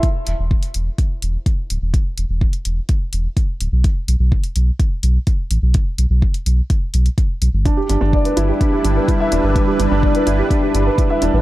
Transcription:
<<
  \new Staff \with { instrumentName = "Grand piano" } { \time 4/4 \key g \major \tempo 4 = 126 r1 | r1 | r1 | r1 |
d'16 g'16 d'16 d'16 d''16 b'16 e'16 g'16 d'16 g'16 d'16 b'16 e'16 e''16 d'16 b'16 | d'16 g'16 d'16 d'16 d''16 b'16 e'16 g'16 d'16 g'16 d'16 b'16 e'16 e''16 d'16 b'16 | }
  \new Staff \with { instrumentName = "Analog synth pad" } { \time 4/4 \key g \major r1 | r1 | r1 | r1 |
<g d' e' b'>1~ | <g d' e' b'>1 | }
  \new Staff \with { instrumentName = "Analog synth bass" } { \clef bass \time 4/4 \key g \major r8 e,,16 e,,16 r8 e,,16 r8. e,,16 r8. d,,16 e,,16 | r8 e,,16 e,,16 r8 e,,16 r8. e,,16 r8. d,,16 b,,16 | r8 b,,16 b,,16 r8 b,,16 r8. b,,16 r8. a,,16 b,,16 | r8 b,,16 b,,16 r8 b,,16 r8. b,,16 r8. b,,16 g,,16 |
r8 g,,16 g,,16 r8 g,,16 r8. g,,16 r8. e,,16 g,,16 | r8 g,,16 g,,16 r8 g,,16 r8. g,,16 r8. e,,16 a,,16 | }
  \new DrumStaff \with { instrumentName = "Drums" } \drummode { \time 4/4 <hh bd>8 hh8 bd16 hh16 hh8 <hh bd>8 hh8 <hh bd>8 hh8 | <hh bd>8 hh8 bd16 hh16 hh8 <hh bd>8 hh8 <hh bd>8 hh8 | <hh bd>8 hh8 bd16 hh16 hh8 <hh bd>8 hh8 <hh bd>8 hh8 | <hh bd>8 hh8 bd16 hh16 hh8 <hh bd>8 hh16 hh16 <hh bd>8 hh8 |
<hh bd>8 hh8 bd16 hh16 hh8 <hh bd>8 hh8 <hh bd>8 hh8 | <hh bd>8 hh8 bd16 hh16 hh8 <hh bd>8 hh8 <hh bd>8 hh8 | }
>>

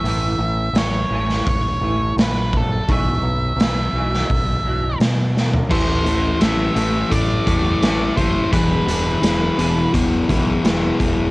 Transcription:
<<
  \new Staff \with { instrumentName = "Lead electric guitar" } { \time 4/4 \key a \dorian \tempo 4 = 85 e''4 cis''4 cis''4 b'8 a'8 | e''2. r4 | c''4 e''4 d''4. c''8 | b'2 r2 | }
  \new Staff \with { instrumentName = "Clean electric guitar" } { \clef bass \time 4/4 \key a \dorian <a, e a>8 <a, e>8 <a, e>8 <a, e a>8 <a, e>8 <a, e a>8 <a, e>8 <a, e>8 | <b, e fis>8 <b, e>8 <b, e>8 <b, e fis>8 r8 <b, e fis>8 <b, e>8 <b, e>8 | <a, e a>8 <a, e>8 <a, e>8 <a, e a>8 <a, e>8 <a, e>8 <a, e a>8 <a, e>8 | <e g d'>8 <e g d'>8 <e g>8 <e g d'>8 <e g>8 <e g>8 <e g>8 <e g>8 | }
  \new Staff \with { instrumentName = "Distorted electric guitar" } { \clef bass \time 4/4 \key a \dorian r1 | r1 | <a, e a>8 <a, e a>8 <a, e a>8 <a, e a>8 <a, e a>8 <a, e a>8 <a, e a>8 <a, e a>8 | <e, b, e>8 <e, b, e>8 <e, b, e>8 <e, b, e>8 <e, b, e>8 <e, b, e>8 <e, b, e>8 <e, b, e>8 | }
  \new Staff \with { instrumentName = "Fingered electric bass" } { \clef bass \time 4/4 \key a \dorian a,,8 a,,8 a,,8 a,,8 a,,8 a,,8 ais,,4 | b,,8 b,,8 b,,8 b,,8 b,,8 b,,8 b,4 | a,,8 a,,8 a,,8 a,,8 a,,8 e,8 a,,8 fis,,8 | e,,8 e,,8 e,,8 e,,8 e,,8 b,,8 e,,8 e,,8 | }
  \new DrumStaff \with { instrumentName = "Drums" } \drummode { \time 4/4 hho4 <hho sn>8. sn16 <hho bd>4 <hho sn>8 bd8 | <hho bd>4 <hho sn>8. sn16 <hho bd>4 <hho sn>8 sn16 tomfh16 | <cymc bd>8 hh8 <hh sn>8 hh8 <hh bd>8 <hh bd>8 <hh sn>8 <hh bd>8 | <hh bd>8 hh8 <hh sn>8 hh8 <hh bd>8 <hh bd>8 <hh sn>8 <hh bd>8 | }
>>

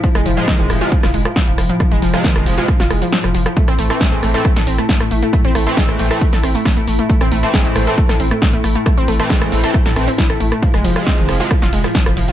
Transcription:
<<
  \new Staff \with { instrumentName = "Synth arpeggio sound" } { \time 4/4 \key a \minor \tempo 4 = 136 f16 aes16 f16 f16 dis16 dis16 f16 f'16 f16 f'16 aes16 f16 f16 f16 f16 f16 | f16 aes16 f16 f16 dis16 dis16 f16 f'16 f16 f'16 aes16 f16 f16 f16 f16 f16 | a16 c'16 a16 a16 gis16 gis16 a16 a'16 a16 a'16 c'16 a16 a16 a16 a16 a16 | a16 c'16 a16 a16 gis16 gis16 a16 a'16 a16 a'16 c'16 a16 a16 a16 a16 a16 |
a16 c'16 a16 a16 gis16 gis16 a16 a'16 a16 a'16 c'16 a16 a16 a16 a16 a16 | a16 c'16 a16 a16 gis16 gis16 a16 a'16 a16 a'16 c'16 c'16 e'16 a'16 a16 a16 | f16 aes16 f16 f16 c'16 dis16 f16 f'16 f16 f'16 aes16 f16 f16 f16 f16 f16 | }
  \new Staff \with { instrumentName = "Analog polysynth" } { \clef bass \time 4/4 \key a \minor r8. <c f aes>4 <c f aes>16 r2 | r8. <c f aes>4 <c f aes>16 r2 | r8. <e a c'>4 <e a c'>16 r2 | r8. <e a c'>4 <e a c'>16 r2 |
r8. <e a c'>4 <e a c'>16 r2 | r8. <e a c'>4 <e a c'>16 r8 <e a c'>16 r4 r16 | r8. <c f aes>4 <c f aes>16 r2 | }
  \new Staff \with { instrumentName = "Synth drone" } { \clef bass \time 4/4 \key a \minor <a, e'>1~ | <a, e'>1 | <a, e'>1~ | <a, e'>1~ |
<a, e'>1~ | <a, e'>1~ | <a, e'>1 | }
  \new Staff \with { instrumentName = "Sub bass" } { \clef bass \time 4/4 \key a \minor r16 f,,16 f,,16 r8 f,,16 f,,16 r8 f,,16 f,,16 r8 f,,16 f,,16 r16 | r16 f,,16 f,,16 r8 f,,16 f,,16 r8 f,,16 f,,16 r8 f,,16 f,,16 r16 | r16 a,,16 a,,16 r8 a,,16 a,,16 r8 a,,16 a,,16 r8 a,,16 a,,16 r16 | r16 a,,16 a,,16 r8 a,,16 a,,16 r8 a,,16 a,,16 r8 a,,16 a,,16 r16 |
r16 a,,16 a,,16 r8 a,,16 a,,16 r8 a,,16 a,,16 r8 a,,16 a,,16 r16 | r16 a,,16 a,,16 r8 a,,16 a,,16 r8 a,,16 a,,16 r8 a,,16 a,,16 r16 | r16 f,,16 f,,16 r8 f,,16 f,,16 r8 f,,16 f,,16 r8 f,,16 f,,16 r16 | }
  \new DrumStaff \with { instrumentName = "Drums" } \drummode { \time 4/4 <hh bd>16 <hh ss>16 hho16 hh16 <hh bd ss sn>16 hh16 <hho ss>16 hh16 <hh bd>16 <hh ss sn>16 hho16 <hh ss>16 <hh bd sn>16 hh16 <hho ss>16 hh16 | <hh bd ss>16 hh16 hho16 <hh ss>16 <hh bd sn>16 <hh ss>16 hho16 hh16 <hh bd ss>16 <hh sn>16 <hho ss>16 hho16 <hh sn>16 <hh ss>16 hho16 <hh ss>16 | <hh bd>16 <hh ss>16 hho16 <hh ss>16 <hh bd sn>16 hh16 <hho ss>16 hh16 <hh bd ss>16 <hh sn>16 hho16 <hh ss>16 <hh bd sn>16 <hh ss>16 hho16 hh16 | <hh bd ss>16 hh16 <hho ss>16 hh16 <hh bd sn>16 <hh ss>16 hho16 <hh ss>16 <hh bd>16 <hh sn>16 <hho ss>16 hho16 <hh bd ss sn>16 hh16 hho16 hh16 |
<hh bd>16 <hh ss>16 hho16 hh16 <hh bd ss sn>16 hh16 <hho ss>16 hh16 <hh bd>16 <hh ss sn>16 hho16 <hh ss>16 <hh bd sn>16 hh16 <hho ss>16 hh16 | <hh bd ss>16 hh16 hho16 <hh ss>16 <hh bd sn>16 <hh ss>16 hho16 hh16 <hh bd ss>16 <hh sn>16 <hho ss>16 hho16 <hh bd sn>16 <hh ss>16 hho16 <hh ss>16 | <hh bd cymr>16 <hh ss>16 <hho cymr>16 <hh ss>16 <hh bd cymr sn>16 hh16 <hho cymr ss>16 hh16 <hh bd cymr ss>16 <hh sn>16 <hho cymr>16 <hh ss>16 <hh bd cymr sn>16 <hh ss>16 <hho cymr>16 hh16 | }
>>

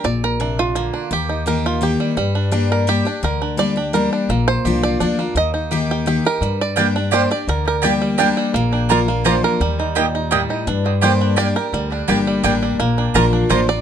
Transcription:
<<
  \new Staff \with { instrumentName = "Mandolin" } { \time 3/4 \key g \minor \tempo 4 = 169 r2. | r2. | r2. | r2. |
r2. | r2. | r4 <bes g' d'' g''>16 r8. <bes g' d'' g''>16 r8. | r4 <bes g' d'' g''>16 r8. <bes g' d'' g''>16 r8. |
r4 <bes f' d'' bes''>16 r8. <bes f' d'' bes''>16 r8. | r4 <bes g' ees'' g''>16 r8. <bes g' ees'' g''>16 r8. | r4 <bes g' d'' g''>16 r8. <bes g' d'' g''>16 r8. | r4 <bes g' d'' g''>16 r8. <bes g' d'' g''>16 r8. |
r4 <bes f' d'' bes''>16 r8. <bes f' d'' bes''>16 r8. | }
  \new Staff \with { instrumentName = "Five-string banjo" } { \time 3/4 \key g \minor << { d''8 bes'4 f'4. | g'4 bes'8 f'8 g'4~ | g'8 r4 bes'8 g'4 | bes'4 d''4 bes'8 r8 |
r8 c''4 d''4. | ees''4 r8 g'8 g'8 bes'8~ | bes'8 d''4. c''8 d''8 | bes'8 bes'8 g'8 r4. |
r4 bes'4 c''8 bes'8~ | bes'8 r2 r8 | r4 c''4 d''8 bes'8~ | bes'8 r2 r8 |
r4 bes'4 c''8 d''8 | } \\ { r4 d'4 bes8 d'8 | r8 ees'4. r8 g8 | g8 d'8 d'4. d'8~ | d'8 d'4 d'4 d'8 |
bes4 g'4 d'8 bes8 | r8 ees'8 g'4. r8 | g4 d'8 d'4. | r4. g8 d'8 g8 |
bes8 d'4 bes4. | g8 ees'8 ees'8 ees'8 g8 ees'8 | d'8 d4 d'4. | g8 d'8 g'8 g8 d'8 g8 |
bes8 d'4 d'4. | } >> }
  \new Staff \with { instrumentName = "Steel-string acoustic guitar" } { \time 3/4 \key g \minor << { r2. | r4 <ees bes ees' g'>4 <ees bes ees' g'>4 | r4 <g bes d' g'>4 <g bes d' g'>8 <d' g'>8 | r4 <g bes d' g'>8 <d' g'>8 <g bes d' g'>4 |
r4 <f bes d' f'>4 <f bes d' f'>8 <d' f'>8 | r4 <ees bes ees' g'>4 <ees bes ees' g'>8 <ees' g'>8 | r4 <g bes d' g'>8 <d' g'>8 <g bes d' g'>8 <d' g'>8 | r4 <g bes d' g'>4 <g bes d' g'>4 |
r4 <f bes d' f'>8 <d' f'>8 <f bes d' f'>4 | r2. | r4 <g bes d' g'>4 <g bes d' g'>8 <d' g'>8 | r4 <g bes d' g'>4 <g bes d' g'>4 |
r4 <f bes d' f'>4 <f bes d' f'>8 <d' f'>8 | } \\ { bes,4 c4 d4 | ees2 r4 | g,2 r4 | d2 r4 |
bes,2 r4 | ees2 r4 | g,2 r4 | d2 r4 |
bes,2 r4 | ees4 bes,4 a,4 | g,2 r4 | d2 r4 |
bes,2 r4 | } >> }
  \new Staff \with { instrumentName = "Upright bass" } { \clef bass \time 3/4 \key g \minor bes,,2. | ees,2. | g,2. | d,2. |
bes,,4 c,4 d,4 | ees,2. | g,2. | d,2. |
bes,,2. | ees,2. | g,2. | d,4 g,,4 a,,4 |
bes,,4 bes,,4 a,,4 | }
>>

